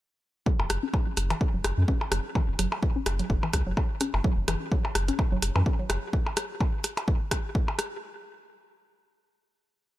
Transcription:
0.46 0.53 F#3 medium
0.46 kick loud
0.59 0.66 F#1 medium
0.59 percussion blips soft
0.70 0.78 F#1 medium
0.70 cross-stick medium
0.70 closed hi-hat medium
0.83 0.85 C#4 medium
0.94 kick loud
0.94 percussion blips soft
1.07 1.12 F#3 medium
1.17 1.33 F#1 medium
1.17 cross-stick soft
1.17 closed hi-hat medium
1.30 1.34 E3 medium
1.30 closed hi-hat soft
1.30 percussion blips soft
1.41 kick loud
1.54 1.60 F#1 medium
1.54 1.59 F#3 medium
1.64 1.72 F#1 medium
1.64 cross-stick medium
1.64 closed hi-hat medium
1.64 percussion blips soft
1.78 1.84 F#2 medium
1.88 1.91 C#4 medium
1.88 kick loud
2.01 percussion blips soft
2.12 2.20 F#1 medium
2.12 2.18 F#3 medium
2.12 cross-stick medium
2.12 closed hi-hat medium
2.35 2.40 E3 medium
2.35 kick loud
2.35 percussion blips soft
2.48 2.55 F#1 loud
2.59 2.67 F#1 medium
2.59 2.66 F#3 medium
2.59 cross-stick soft
2.59 closed hi-hat medium
2.72 percussion blips soft
2.83 kick loud
2.96 2.98 C#4 medium
3.06 3.21 F#1 medium
3.06 cross-stick medium
3.06 closed hi-hat medium
3.06 percussion blips soft
3.19 3.25 F#3 medium
3.19 closed hi-hat soft
3.30 3.38 F#1 loud
3.30 kick loud
3.43 3.46 E3 medium
3.43 percussion blips soft
3.53 3.61 C#2 medium
3.53 kick medium
3.53 cross-stick medium
3.53 closed hi-hat medium
3.67 3.73 F#1 medium
3.67 3.72 F#3 medium
3.77 kick loud
3.77 percussion blips soft
4.01 4.03 C#4 medium
4.01 cross-stick soft
4.01 closed hi-hat medium
4.14 4.20 F#1 loud
4.14 percussion blips soft
4.24 4.31 F#3 medium
4.24 kick loud
4.38 4.44 F#1 loud
4.48 4.56 F#1 medium
4.48 4.52 E3 medium
4.48 cross-stick medium
4.48 closed hi-hat medium
4.48 percussion blips soft
4.72 4.78 F#3 medium
4.72 kick loud
4.85 percussion blips soft
4.95 5.10 F#1 loud
4.95 cross-stick medium
4.95 closed hi-hat medium
5.08 5.10 C#4 medium
5.08 closed hi-hat soft
5.19 kick loud
5.19 percussion blips soft
5.32 5.38 F#1 loud
5.32 5.37 F#3 medium
5.42 5.50 F#1 medium
5.42 cross-stick soft
5.42 closed hi-hat loud
5.56 5.62 F#2 medium
5.56 5.59 E3 medium
5.56 percussion blips soft
5.66 kick loud
5.79 5.84 F#3 medium
5.90 5.98 F#1 medium
5.90 cross-stick medium
5.90 closed hi-hat medium
5.90 percussion blips soft
6.13 kick loud
6.26 percussion blips soft
6.37 cross-stick medium
6.37 closed hi-hat medium
6.61 kick loud
6.61 percussion blips soft
6.84 cross-stick soft
6.84 closed hi-hat medium
6.97 closed hi-hat soft
6.97 percussion blips soft
7.08 kick loud
7.31 kick medium
7.31 cross-stick medium
7.31 closed hi-hat loud
7.31 percussion blips soft
7.55 kick loud
7.68 percussion blips soft
7.79 cross-stick medium
7.79 closed hi-hat loud

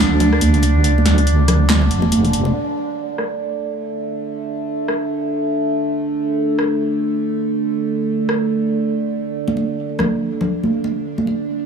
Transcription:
0.00 0.40 D2 loud
0.00 2.54 D3 medium
0.00 2.57 D4 medium
0.20 closed hi-hat medium
0.20 low conga medium
0.33 cross-stick medium
0.41 1.04 D2 loud
0.41 closed hi-hat medium
0.41 high conga medium
0.54 closed hi-hat soft
0.62 closed hi-hat medium
0.62 muted conga medium
0.84 closed hi-hat medium
0.98 high conga medium
1.05 1.89 D2 loud
1.05 snare medium
1.05 closed hi-hat medium
1.05 muted conga medium
1.18 closed hi-hat soft
1.27 closed hi-hat medium
1.48 cross-stick medium
1.48 open hi-hat loud
1.48 low conga loud
1.69 snare loud
1.69 clap medium
1.69 closed hi-hat medium
1.82 muted conga soft
1.90 2.53 F1 loud
1.90 closed hi-hat medium
2.02 muted conga medium
2.12 closed hi-hat medium
2.12 high conga medium
2.25 closed hi-hat soft
2.33 closed hi-hat medium
2.45 muted conga medium
2.55 11.66 D3 medium
2.55 9.38 A3 medium
3.18 cross-stick medium
4.88 cross-stick medium
6.59 cross-stick medium
8.29 cross-stick medium
9.35 11.66 D4 medium
9.48 high conga medium
9.57 muted conga soft
9.99 cross-stick medium
9.99 high conga medium
9.99 low conga medium
10.41 low conga medium
10.63 high conga medium
10.84 muted conga medium
11.18 high conga medium
11.27 muted conga soft

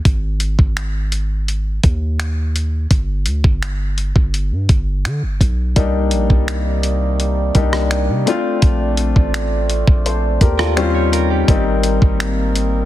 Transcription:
0.05 0.57 G#1 loud
0.05 kick loud
0.05 closed hi-hat medium
0.40 closed hi-hat medium
0.59 1.80 G#1 loud
0.59 kick medium
0.77 finger snap loud
0.77 closed hi-hat medium
1.12 closed hi-hat medium
1.48 closed hi-hat medium
1.83 2.87 D#2 loud
1.83 kick medium
1.83 closed hi-hat medium
2.20 finger snap loud
2.20 closed hi-hat medium
2.56 closed hi-hat medium
2.91 3.28 G1 loud
2.91 kick medium
2.91 closed hi-hat medium
3.26 3.43 D2 medium
3.26 closed hi-hat medium
3.44 4.13 G1 loud
3.44 kick medium
3.63 finger snap loud
3.63 closed hi-hat medium
3.98 closed hi-hat medium
4.16 4.53 G1 loud
4.16 kick loud
4.34 closed hi-hat medium
4.51 4.68 G2 medium
4.69 5.06 G1 loud
4.69 kick medium
4.69 closed hi-hat medium
5.05 5.24 D3 loud
5.05 finger snap loud
5.05 closed hi-hat medium
5.23 5.40 G1 medium
5.41 5.75 B1 loud
5.41 kick medium
5.41 closed hi-hat medium
5.76 6.14 C2 loud
5.76 8.24 C3 medium
5.76 8.24 D#3 medium
5.76 6.73 G3 medium
5.76 8.24 A#3 medium
5.76 6.74 A#3 medium
5.76 6.74 D4 medium
5.76 6.75 D#4 medium
5.76 10.73 D5 medium
5.76 kick medium
5.76 closed hi-hat medium
6.11 6.29 A#1 loud
6.11 closed hi-hat medium
6.30 7.51 C2 loud
6.30 kick medium
6.48 finger snap loud
6.48 closed hi-hat medium
6.83 closed hi-hat medium
7.20 closed hi-hat medium
7.55 8.11 C2 loud
7.55 8.26 G3 medium
7.55 8.27 A#3 medium
7.55 8.26 D4 medium
7.55 8.28 D#4 medium
7.55 kick medium
7.55 closed hi-hat medium
7.73 cross-stick medium
7.91 finger snap loud
7.91 closed hi-hat medium
8.09 8.26 C3 medium
8.26 9.41 A3 medium
8.26 10.74 A3 medium
8.26 10.74 C4 medium
8.26 9.41 C4 medium
8.26 9.42 D4 medium
8.26 9.42 F4 medium
8.26 closed hi-hat medium
8.62 9.14 A#1 loud
8.62 kick loud
8.62 closed hi-hat medium
8.97 closed hi-hat medium
9.16 9.85 A1 medium
9.16 kick medium
9.34 finger snap loud
9.34 closed hi-hat medium
9.70 closed hi-hat medium
9.87 10.39 A#1 loud
9.87 kick loud
10.06 10.40 A4 medium
10.06 10.40 C5 medium
10.06 closed hi-hat medium
10.41 11.44 D#2 loud
10.41 10.59 G4 medium
10.41 10.58 A#4 medium
10.41 kick medium
10.41 closed hi-hat medium
10.59 10.76 F4 medium
10.59 10.78 F4 medium
10.59 10.93 A4 medium
10.59 10.76 A#4 medium
10.59 cross-stick loud
10.76 11.47 C#3 medium
10.76 11.34 G3 medium
10.76 11.47 G3 medium
10.76 11.34 C4 medium
10.76 11.34 C#4 medium
10.76 11.47 D#4 medium
10.76 11.35 F4 medium
10.76 10.94 G4 medium
10.76 10.94 C5 medium
10.76 finger snap loud
10.76 closed hi-hat medium
10.95 11.12 G4 medium
10.95 11.12 C#5 medium
11.12 11.30 F4 medium
11.12 11.29 A#4 medium
11.12 closed hi-hat medium
11.30 11.65 C#4 medium
11.30 11.64 G4 medium
11.48 12.00 G#1 loud
11.48 12.45 G3 medium
11.48 12.85 A#3 medium
11.48 12.45 A#3 medium
11.48 12.85 C4 medium
11.48 12.46 C4 medium
11.48 12.46 D#4 medium
11.48 12.85 A#4 medium
11.48 kick loud
11.48 closed hi-hat medium
11.83 closed hi-hat medium
12.02 12.85 G#1 loud
12.02 kick medium
12.20 finger snap loud
12.20 closed hi-hat medium
12.55 closed hi-hat medium

